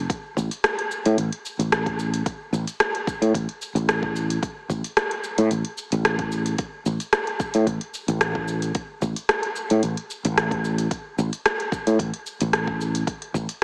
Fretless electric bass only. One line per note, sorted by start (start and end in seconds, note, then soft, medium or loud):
0.37 0.48 A1 loud
1.06 1.15 A2 medium
1.18 1.29 A1 medium
1.59 2.21 A1 medium
2.53 2.64 A1 medium
3.22 3.31 A2 medium
3.35 3.46 A1 medium
3.75 4.37 A1 loud
4.70 4.81 A1 loud
5.38 5.48 A2 medium
5.51 5.62 A1 medium
5.92 6.54 A1 medium
6.86 6.97 A1 medium
7.55 7.64 A2 medium
7.67 7.78 A1 medium
8.08 8.70 A1 medium
9.02 9.13 A1 medium
9.71 9.80 A2 medium
9.83 9.94 A1 medium
10.25 10.87 A1 loud
11.18 11.29 A1 loud
11.87 11.97 A2 medium
11.99 12.10 A1 medium
12.41 13.03 A1 loud
13.35 13.46 A1 loud